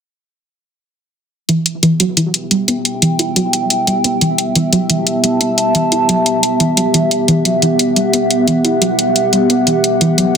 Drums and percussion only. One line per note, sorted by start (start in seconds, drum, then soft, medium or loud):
1.49 closed hi-hat medium
1.66 closed hi-hat medium
1.83 closed hi-hat medium
2.00 closed hi-hat medium
2.17 closed hi-hat medium
2.34 closed hi-hat medium
2.51 closed hi-hat medium
2.68 closed hi-hat medium
2.85 closed hi-hat medium
3.02 closed hi-hat medium
3.19 closed hi-hat medium
3.36 closed hi-hat medium
3.53 closed hi-hat medium
3.70 closed hi-hat loud
3.87 closed hi-hat medium
4.04 closed hi-hat medium
4.21 closed hi-hat medium
4.38 closed hi-hat medium
4.55 closed hi-hat medium
4.73 closed hi-hat medium
4.90 closed hi-hat medium
5.07 closed hi-hat medium
5.24 closed hi-hat medium
5.41 closed hi-hat medium
5.58 closed hi-hat medium
5.75 closed hi-hat medium
5.92 closed hi-hat medium
6.09 closed hi-hat medium
6.26 closed hi-hat medium
6.43 closed hi-hat medium
6.60 closed hi-hat medium
6.77 closed hi-hat medium
6.94 closed hi-hat medium
7.11 closed hi-hat medium
7.28 closed hi-hat medium
7.45 closed hi-hat medium
7.62 closed hi-hat medium
7.79 closed hi-hat medium
7.96 closed hi-hat medium
8.13 closed hi-hat medium
8.31 closed hi-hat medium
8.48 closed hi-hat medium
8.65 closed hi-hat medium
8.82 closed hi-hat medium
8.99 closed hi-hat medium
9.16 closed hi-hat medium
9.33 closed hi-hat medium
9.50 closed hi-hat medium
9.67 closed hi-hat medium
9.84 closed hi-hat medium
10.01 closed hi-hat medium
10.18 closed hi-hat medium